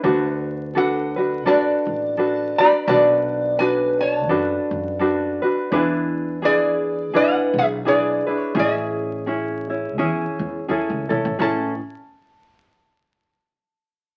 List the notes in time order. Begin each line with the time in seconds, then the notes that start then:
0.03 D2 D4 F#4 A4 B4
0.74 D4 F#4 A4 B4 F#5
1.16 D4 F#4 B4
1.45 A1 D4 F#4 A4 B4 D5 A5
1.86 A1
2.17 D4 F#4 A4 B4
2.56 F#4 B4 D5 B5
2.60 D4 D5
2.87 B1 D4 F#4 A4 B4 D5 A5
3.57 D4 F#4 A4 B4 G#5
3.98 D5 A5
4.02 C#5
4.29 F#2 D4 F#4 A4 B4
4.71 F#2
4.99 D4 F#4 A4 B4
5.42 D4 F#4 B4
5.72 E2 D4 E4 G#4 B4
6.42 D4 E4 G#4 B4 D5
7.13 B1 D4 E4 G#4 B4 F#5
7.54 B1 G#4
7.58 G#4 E5
7.84 D4 E4 G#4 B4 D5
8.27 D4 E4 B4
8.38 C#5
8.55 A1 C#4 E4 G#4
8.59 G#4 E5
9.26 C#4 E4 G#4
9.70 C#4 E4
9.98 E2 C#4 E4 G#4
10.39 E2
10.68 E2 C#4 E4 G#4 A4
10.90 C#2
11.09 B1 C#4 E4 A4
11.25 A1
11.39 A1 C#4 E4 G#4 A4 A5